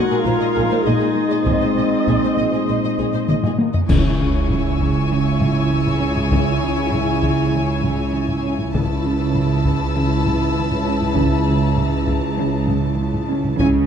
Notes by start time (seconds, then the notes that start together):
Already playing: A#2 G#3 D#4 F#4 A#4 F#5 C6 D#6 G#6
0.10 A#2 G#4
0.24 A#1 A#2 F4 C5 F5
0.40 A#2 D#5
0.55 A#1 A#2 G#4
0.71 A#2 C5
0.85 A#1 A#2 D#4 G#4 D#5
1.00 A#2 G#4
1.17 A#3
1.30 A#2 D#5
1.46 A#1 A#2 C4 G#4 C5 D#5, taiko
1.51 A6
1.62 A#2 C5
1.77 A#1 A#2 D#5
2.07 A#1 A#2 G#4, taiko
2.22 A#2 C5
2.37 A#1 A#2 D#5
2.53 A#2 G#4
2.67 A#1 A#2 C5
2.83 A#2 D#5
2.98 A#1 A#2 G#4
3.13 A#2 C5
3.28 A#1 A#2 D#5, taiko mid
3.43 A#2 G#4, taiko low-mid
3.59 A#3, taiko high
3.74 A#2 D#5, taiko low
3.89 C#2 C#3 E4 C#5 G#5 C#6, concert bass drum, taiko, crash
4.20 C#3
4.49 C#3 E6, taiko low-mid
4.80 C#3, taiko
5.12 C#3
5.41 C#3, taiko low-mid
5.71 C#3
5.86 taiko low-mid
6.02 C#4
6.17 taiko low-mid
6.31 C#3, taiko
6.63 C#3
6.92 C#3, taiko low-mid
7.23 C#3, taiko
7.53 C#3
7.83 C#3, taiko low-mid
8.14 C#3
8.29 taiko low-mid
8.44 C#4
8.59 taiko low-mid
8.74 C#2 C#3 E4 B4 A5 B5 E6, taiko
9.05 C#3
9.35 C#3, taiko low-mid
9.65 C#3, taiko
9.96 C#3
10.26 C#3, taiko low-mid
10.56 C#3
10.71 taiko low-mid
10.87 C#4
11.01 taiko low-mid
11.16 C#3, taiko
11.47 C#3
11.68 A#5
11.77 C#3, taiko low-mid
12.07 C#3, taiko
12.38 C#3
12.68 C#3, taiko low-mid
12.99 C#3
13.14 taiko low-mid
13.29 C#4
13.44 taiko low-mid
13.59 C#2 C#3 E4 C#5 G#5, taiko